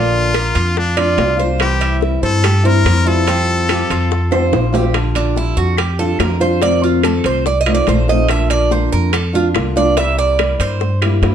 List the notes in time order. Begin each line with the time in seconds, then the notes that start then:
Already playing: A#1 D3 A#3 D4 F4
0.34 D3 A#3 D4 A#4, high bongo, high timbale, claves
0.55 F2 F4, high bongo, high timbale
0.76 D4, muted steel-string acoustic guitar stroke, high bongo
0.97 A#3 D4 F4 D5, high bongo, high timbale, claves
1.17 C2 D3 A#3 D4 F4, high bongo, low bongo, high timbale, low timbale
1.37 A#3 D4 F4 C5, high bongo
1.58 C3 E3 G3 C4 E4 G4, high bongo, high timbale, claves
1.81 E5, high timbale
2.01 E3 G3 C4 E4, high bongo
2.22 G2 A4 C5
2.43 G4, muted steel-string acoustic guitar stroke, high bongo, high timbale, claves
2.63 E3 G3 C4 E4 A#4 C5
2.85 F2 E3 G3 C4 E4, high bongo, low bongo, high timbale, claves
3.05 E3 G3 C4 E4 F4 A4
3.26 F3 G3 C4 F4, high bongo, high timbale
3.68 F3 G3 C4 F4 G4, high bongo, high timbale, claves
3.90 F2 F4, high bongo, high timbale
4.11 muted steel-string acoustic guitar stroke, high bongo
4.31 G3 C4 F4 C5, high bongo, high timbale, claves
4.52 A#1 F3 G3 C4 F4, high bongo, low bongo, high timbale
4.73 G3 C4 F4 G4, high bongo, low timbale
4.94 D3 G3 D4 F4, high bongo, high timbale, claves
5.15 D4, high timbale
5.36 D3 G3 D4 E4 F4, high bongo
5.57 F2 F#4
5.77 G4, muted steel-string acoustic guitar stroke, high bongo, high timbale, claves
5.99 G3 D4 F4 A4
6.19 F2 D3 G3 D4 F4 A#4, high bongo, low bongo, high timbale, low timbale, claves
6.40 G3 D4 F4 C5
6.62 C3 D#3 A3 C4 F4 D5, high bongo, high timbale
6.84 F4
7.03 D#3 A3 C4 F4 A4, high bongo, high timbale, claves
7.24 C2 C5, high bongo, high timbale
7.46 D5, muted steel-string acoustic guitar stroke, high bongo
7.61 D#5
7.66 D#3 A3 C4 F4, high bongo, high timbale, claves
7.75 D5
7.87 A#1 D#3 A3 C4 F4 C5, high bongo, low bongo, high timbale
8.08 D#3 A3 C4 F4 D#5, high bongo
8.28 D3 A#3 D4 F4 E5, high bongo, high timbale, claves
8.50 D5, high timbale
8.71 D3 A#3 D4 F4 C5, high bongo
8.92 F2 A#4
9.13 A4, muted steel-string acoustic guitar stroke, high bongo, high timbale, claves
9.33 A#3 D4 F4
9.54 C2 D3 A#3 D4 F4, high bongo, low bongo, high timbale, claves
9.76 A#3 D4 F4 D5
9.96 C3 G3 A#3 E4 G4 E5, high bongo, high timbale
10.19 D5
10.39 G3 A#3 E4 G4, high bongo, high timbale, claves
10.59 G2 C5, high bongo, high timbale
10.80 muted steel-string acoustic guitar stroke, high bongo
11.02 G3 A#3 E4 G4, high bongo, high timbale, claves
11.22 G2 G3 A#3 E4 G4, high bongo, low bongo, high timbale, low timbale